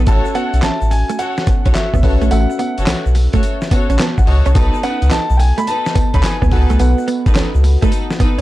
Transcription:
0.06 A1 A3 C#4 F#4 A4 C#5 E5 A5, kick, closed hi-hat, shaker
0.25 muted clean electric guitar stroke, shaker
0.35 B3 F#4 A4 C#5 F#5, closed hi-hat, shaker
0.54 B1, closed hi-hat, shaker
0.62 A1 C#4 A5, snare, clap, closed hi-hat, shaker
0.81 A1, shaker
0.91 G#5, muted clean electric guitar stroke, open hi-hat, shaker
1.09 A3, closed hi-hat, shaker
1.19 F#4 A4 C#5 F#5, muted clean electric guitar stroke, closed hi-hat, shaker
1.37 snare, shaker
1.47 B1 B3, kick, closed hi-hat, shaker
1.65 B1 C#4 F#4 A4 C#5, kick, closed hi-hat, shaker
1.75 E5, snare, clap, closed hi-hat, shaker
1.94 C#2 B3, kick, shaker
2.03 B1 C#4 F#4 A4 B4 C#5, muted clean electric guitar stroke, kick, open hi-hat
2.22 A#1 A3, closed hi-hat, shaker
2.31 A1 A3 C#4 F#4 A4 E5 F#5, closed hi-hat, tambourine, shaker
2.50 muted clean electric guitar stroke, shaker
2.59 B3 F#5, closed hi-hat, tambourine, shaker
2.77 F#1 F#4 A4 C#5, closed hi-hat, shaker
2.86 B1 C#4, snare, clap, closed hi-hat, tambourine, shaker
3.06 B1, shaker
3.15 muted clean electric guitar stroke, open hi-hat, tambourine, shaker
3.33 A3 F#4 A4 C#5, kick, closed hi-hat, shaker
3.43 muted clean electric guitar stroke, closed hi-hat, tambourine, shaker
3.62 snare, shaker
3.71 A1 B3 F#4 A4 C#5, kick, closed hi-hat, tambourine, shaker
3.90 A1 C#4, closed hi-hat, shaker
3.99 B3 A5, snare, clap, closed hi-hat, tambourine, shaker
4.18 A1 F#5, muted clean electric guitar stroke, kick, shaker
4.27 C#2 F#4 A4 C#5 D#5, open hi-hat
4.46 C2 C#4 C#5, closed hi-hat, shaker
4.55 B1 B3 D#4 F#4 A4 B4 D#5 A5, kick, closed hi-hat, tambourine, shaker
4.74 muted clean electric guitar stroke, shaker
4.83 C#4 D#4 A4 B4 F#5, closed hi-hat, tambourine, shaker
5.02 C#2, closed hi-hat, shaker
5.11 B1 D#4 A5, snare, clap, closed hi-hat, tambourine, shaker
5.30 B1, shaker
5.37 G5 G#5, muted clean electric guitar stroke, open hi-hat, tambourine, shaker
5.58 A3 B5, closed hi-hat, shaker
5.67 D#4 A4 B4 A5, muted clean electric guitar stroke, closed hi-hat, tambourine, shaker
5.86 snare, shaker
5.95 C#2 B3, kick, closed hi-hat, tambourine, shaker
6.14 C#2 C#4 D#4 A4 B4 B5, kick, closed hi-hat, shaker
6.23 G#5, snare, clap, closed hi-hat, tambourine, shaker
6.42 D#2 B3, kick, shaker
6.51 C#2 B3 D#4 F#4 A4 B4 F#5, muted clean electric guitar stroke, kick, open hi-hat
6.70 C2 A3, closed hi-hat, shaker
6.79 B1 B3 F#4 A4 B4 F#5, closed hi-hat, tambourine, shaker
6.98 muted clean electric guitar stroke, shaker
7.08 B3, closed hi-hat, tambourine, shaker
7.26 A1 D#4 A4 B4, kick, closed hi-hat, shaker
7.35 C#2 C#4, snare, clap, closed hi-hat, tambourine, shaker
7.55 C#2, shaker
7.64 muted clean electric guitar stroke, open hi-hat, tambourine, shaker
7.82 A3 D#4 A4 B4, kick, closed hi-hat, shaker
7.92 muted clean electric guitar stroke, closed hi-hat, tambourine, shaker
8.11 snare, shaker
8.20 B1 B3 D#4 A4 B4, kick, closed hi-hat, tambourine, shaker

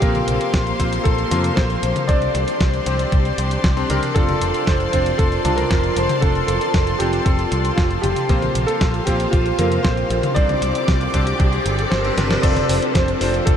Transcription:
Already playing: G4 F5
0.02 A#1 A#3 C4 F4 A#4 C5 C6, kick, closed hi-hat
0.15 closed hi-hat, high tom
0.28 A#1, closed hi-hat
0.41 closed hi-hat
0.54 A#1, kick, snare, closed hi-hat
0.67 closed hi-hat
0.80 A#1 A#3 C4 F4 C5, kick, closed hi-hat
0.93 closed hi-hat
1.04 A#1 A4, kick, closed hi-hat
1.18 closed hi-hat
1.31 F2 A#3 C4 F4 A#4, closed hi-hat, high tom
1.44 closed hi-hat
1.56 A#1 C5, kick, snare, closed hi-hat
1.70 closed hi-hat
1.83 A#1, closed hi-hat
1.96 closed hi-hat, high tom
2.07 C2 C4 D4 G4 C5 D5 C6, kick, closed hi-hat
2.22 closed hi-hat
2.35 C2, closed hi-hat
2.48 closed hi-hat
2.61 C2, kick, snare, closed hi-hat
2.74 closed hi-hat
2.86 C2 C4 D4 G4 C5, closed hi-hat
2.99 closed hi-hat
3.12 C2, kick, closed hi-hat
3.25 closed hi-hat
3.38 C2, closed hi-hat
3.51 closed hi-hat
3.64 C2, kick, snare, closed hi-hat
3.77 C4 D4 G4 C5, closed hi-hat
3.90 C2 C4 D4 G4 A#4, closed hi-hat, high tom
4.03 closed hi-hat
4.15 F1 C4 D4 F4 A4 A5, kick, closed hi-hat
4.29 closed hi-hat, high tom
4.41 F1, closed hi-hat
4.54 closed hi-hat
4.66 F1 C5, kick, snare, closed hi-hat
4.80 closed hi-hat
4.92 F1 C4 D4 F4 C5, kick, closed hi-hat
5.06 closed hi-hat
5.18 F1 A4, kick, closed hi-hat
5.32 closed hi-hat
5.45 C2 C4 D4 F4 A5, closed hi-hat, high tom
5.56 A#4, closed hi-hat
5.71 F1, kick, snare, closed hi-hat
5.84 closed hi-hat
5.95 F1 C5, closed hi-hat
6.09 closed hi-hat, high tom
6.21 F1 C4 D4 F4 A4, kick, closed hi-hat
6.35 closed hi-hat
6.47 F1 A4, closed hi-hat
6.61 closed hi-hat
6.74 F1, kick, snare, closed hi-hat
6.87 closed hi-hat
6.99 F1 C4 D4 F4 G4 A4, closed hi-hat
7.13 closed hi-hat
7.24 F1 A4, kick, closed hi-hat
7.39 closed hi-hat
7.52 C2, closed hi-hat
7.65 closed hi-hat
7.76 F1 F4, kick, snare, closed hi-hat
7.91 closed hi-hat
8.01 F1 G4, closed hi-hat, high tom
8.16 closed hi-hat
8.29 A#1 A#3 C4 F4 C5 F5, kick, closed hi-hat, riser
8.42 closed hi-hat, high tom
8.55 A#1, closed hi-hat
8.66 A4, closed hi-hat
8.81 A#1, kick, snare, closed hi-hat
8.94 closed hi-hat
9.05 A#1 A#3 C4 F4 G4 C5, kick, closed hi-hat
9.20 closed hi-hat
9.31 A#1 F4, kick, closed hi-hat
9.46 closed hi-hat
9.59 F2 A#3 C4 F4 A#4, closed hi-hat, high tom
9.72 closed hi-hat
9.83 A#1 C5, kick, snare, closed hi-hat
9.97 closed hi-hat
10.10 A#1, closed hi-hat
10.23 closed hi-hat, high tom
10.35 C2 C4 D4 G4 C5 D5 D6, kick, closed hi-hat
10.49 closed hi-hat, high tom
10.62 C2, closed hi-hat
10.75 closed hi-hat
10.88 C2, kick, snare, closed hi-hat
11.01 closed hi-hat
11.14 C2 C4 D4 G4 C5, kick, closed hi-hat
11.27 closed hi-hat
11.40 C2, kick, closed hi-hat
11.53 closed hi-hat
11.66 G1, closed hi-hat
11.79 closed hi-hat
11.90 G1 C5, snare, closed hi-hat
12.05 C4 D4 G4 C5, closed hi-hat
12.17 G1 C4 D4 G4 A#4, snare, closed hi-hat, high tom
12.31 snare, closed hi-hat
12.42 F1 F3 C4 D4 F4 A4 D5, kick, closed hi-hat, crash
12.57 closed hi-hat, high tom
12.69 F1, open hi-hat
12.82 closed hi-hat
12.94 F1 C5, kick, snare, closed hi-hat
13.08 closed hi-hat
13.21 F1 C4 D4 F4 C5, open hi-hat
13.34 closed hi-hat
13.45 F1 A4, kick, closed hi-hat

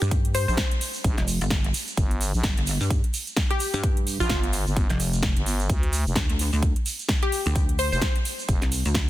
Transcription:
0.02 G2, closed hi-hat, shaker
0.11 kick, closed hi-hat, shaker
0.25 closed hi-hat
0.35 C5, open hi-hat, shaker
0.48 A#1 C5, shaker
0.57 kick, snare, closed hi-hat, shaker
0.71 closed hi-hat
0.81 open hi-hat, shaker
0.94 shaker
1.04 A#1, kick, closed hi-hat, shaker
1.17 F1, snare, closed hi-hat
1.28 open hi-hat, shaker
1.41 G1, closed hi-hat, shaker
1.50 kick, snare, closed hi-hat
1.65 closed hi-hat
1.74 open hi-hat, shaker
1.88 closed hi-hat, shaker
1.97 G1, kick, closed hi-hat, shaker
2.11 closed hi-hat
2.21 open hi-hat, shaker
2.34 A#1, shaker
2.43 G1, kick, snare, closed hi-hat, shaker
2.57 G1, closed hi-hat
2.67 open hi-hat, shaker
2.81 G2, shaker
2.90 kick, closed hi-hat, shaker
3.04 closed hi-hat
3.14 open hi-hat, shaker
3.27 closed hi-hat, shaker
3.36 kick, snare, closed hi-hat, shaker
3.51 G4, closed hi-hat
3.60 open hi-hat, shaker
3.73 G2, closed hi-hat, shaker
3.83 kick, closed hi-hat, shaker
3.97 closed hi-hat
4.07 open hi-hat, shaker
4.20 A#1 F4, shaker
4.29 G1, kick, snare, closed hi-hat, shaker
4.44 closed hi-hat
4.53 open hi-hat, shaker
4.67 G1, shaker
4.76 kick, closed hi-hat, shaker
4.90 F1, snare, closed hi-hat
5.00 open hi-hat, shaker
5.13 closed hi-hat, shaker
5.23 kick, snare, closed hi-hat, shaker
5.37 G1, closed hi-hat
5.46 open hi-hat, shaker
5.60 closed hi-hat, shaker
5.69 D2, kick, closed hi-hat, shaker
5.83 closed hi-hat
5.93 open hi-hat, shaker
6.06 F1, shaker
6.16 D2, kick, snare, closed hi-hat, shaker
6.29 D2, closed hi-hat
6.39 open hi-hat, shaker
6.53 D2, shaker
6.63 kick, closed hi-hat, shaker
6.76 closed hi-hat
6.86 open hi-hat, shaker
6.99 closed hi-hat, shaker
7.09 kick, snare, closed hi-hat, shaker
7.23 G4, closed hi-hat
7.32 open hi-hat, shaker
7.46 D2, closed hi-hat, shaker
7.55 kick, closed hi-hat, shaker
7.69 closed hi-hat
7.79 C5, open hi-hat, shaker
7.92 F1 C5, shaker
8.02 kick, snare, closed hi-hat, shaker
8.16 closed hi-hat
8.25 open hi-hat, shaker
8.39 shaker
8.49 F1, kick, closed hi-hat, shaker
8.62 C2, snare, closed hi-hat
8.72 open hi-hat, shaker
8.85 D2, closed hi-hat, shaker
8.95 kick, snare, closed hi-hat

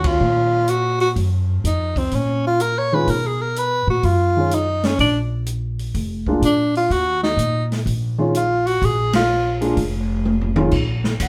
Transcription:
Already playing: D#2 D#3 G#3 C#4 F4
0.04 F4, kick, ride
0.20 A#2
0.67 F#4, closed hi-hat
1.00 F#4, open hi-hat
1.16 F#2, kick, open hi-hat
1.64 F2 D#4, closed hi-hat
1.96 C4, kick, open hi-hat
2.11 A#2 C#4, kick, open hi-hat
2.47 F4
2.60 A#4, closed hi-hat
2.79 C#5
2.92 D#3 G#3 C#4 F4 B4
3.07 B2 A#4, kick, open hi-hat
3.26 G#4
3.42 A#4
3.56 B4, closed hi-hat
3.87 A#2 F#4
4.03 F#2 F4, kick, open hi-hat
4.37 D#3 G#3 C#4 F4
4.51 D#4, closed hi-hat
4.83 C#4, snare, open hi-hat
4.99 A#1 D4, kick, open hi-hat
5.46 closed hi-hat
5.79 open hi-hat
5.94 F1, kick, open hi-hat
6.27 G#3 A#3 D4 F4, kick
6.42 A#2 D4, closed hi-hat
6.75 F4, open hi-hat
6.90 D#2 F#4, kick, open hi-hat
7.23 D#4, snare
7.37 A#2, closed hi-hat
7.72 snare, open hi-hat
7.86 A#1, kick, open hi-hat
8.18 D#3 G#3 C#4 F4
8.35 F4, closed hi-hat
8.67 F#4, open hi-hat
8.82 A#1 G#4, kick, open hi-hat
9.13 F4, snare, ride
9.61 G#3 A#3 D4 F4, open hi-hat
9.77 F1, kick, open hi-hat
10.25 high tom
10.41 floor tom
10.56 D#3 G#3 C#4 F4, floor tom
10.71 A#1, kick, crash
11.04 snare
11.20 C#2 F#5, kick, hi-hat pedal, ride

